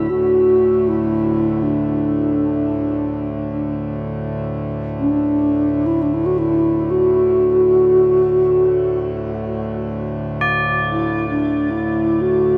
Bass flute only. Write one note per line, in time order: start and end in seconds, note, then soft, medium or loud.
0.00 0.11 E4 medium
0.10 0.90 F#4 medium
0.88 1.64 E4 medium
1.63 3.71 D4 medium
5.00 5.88 D4 medium
5.86 6.03 E4 medium
6.02 6.15 D4 medium
6.14 6.27 E4 medium
6.26 6.40 F#4 medium
6.38 6.92 E4 medium
6.91 9.19 F#4 medium
10.91 11.28 E4 medium
11.30 11.72 D4 medium
11.71 12.23 E4 medium
12.21 12.58 F#4 medium